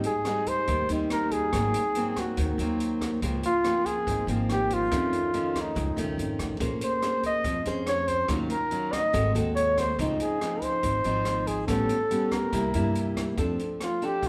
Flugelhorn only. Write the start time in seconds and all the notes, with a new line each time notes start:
0.06 G#4
0.48 C5
1.12 A#4
1.32 G#4
2.19 F#4
3.45 F4
3.86 G#4
4.52 G4
4.73 F4
5.61 D#4
6.83 C5
7.26 D#5
7.88 C#5
8.08 C5
8.51 A#4
8.92 D#5
9.55 C#5
9.79 C5
10.22 G#4
10.62 C5
11.47 G#4
11.68 A4
12.32 A#4
13.83 F4
14.05 G4